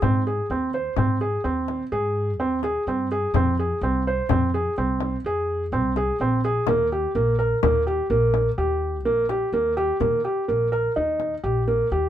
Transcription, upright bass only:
0.02 G#2
0.50 D#2
0.97 G#2
1.44 D#2
1.92 G#2
2.39 D#2
2.87 G2
3.34 F2
3.81 C2
4.30 F2
4.78 C2
5.24 F2
5.72 C2
6.20 A#1
6.68 D#2
7.15 A#1
7.63 D#2
8.10 A#1
8.58 D#2
9.05 A#1
9.52 D#2
10.00 D#2
10.49 A#1
10.97 D#2
11.44 A#1
11.91 D#2

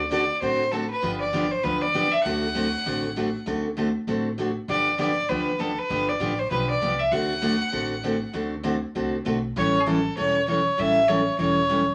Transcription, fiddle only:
0.12 D5
0.42 C5
0.72 A4
0.91 B4
1.21 D5
1.52 C5
1.64 B4
1.82 D5
2.12 E5
2.24 F#5
4.70 D5
5.00 D5
5.29 B4
5.60 A4
5.79 B4
6.09 D5
6.39 C5
6.51 B4
6.70 D5
7.00 E5
7.12 F#5
9.58 C#5
9.81 G#4
9.88 A4
10.18 C#5
10.48 C#5
10.79 E5
11.08 C#5
11.39 C#5

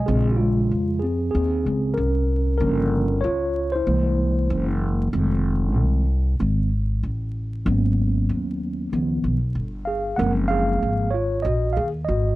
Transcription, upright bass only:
0.08 A#1
0.71 F2
1.35 D#2
1.66 C#2
1.97 C2
2.60 G1
3.24 C#2
3.87 C2
4.50 F#1
5.13 F1
5.76 C2
6.40 G#1
7.03 A1
7.66 G#1
8.29 D#2
8.93 C#2
9.24 B1
9.55 G1
10.19 F#1
10.82 G#1
11.45 A#1
11.77 D#2
12.08 G#1

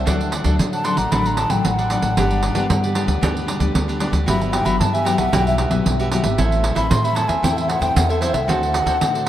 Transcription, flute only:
0.74 A5
0.85 C6
0.98 A#5
1.12 B5
1.27 A#5
1.38 A5
1.50 G5
1.65 F#5
4.28 B5
4.42 E5
4.53 G5
4.65 B5
4.80 A5
4.94 G#5
5.05 G5
5.19 F#5
5.33 G5
5.48 E5
6.76 B5
6.90 C6
7.05 B5
7.15 A5
7.28 G#5
7.44 G5
7.57 E5
7.69 F#5
7.81 G5
7.96 F#5
8.09 A4
8.21 C5
8.34 E5
8.49 F#5

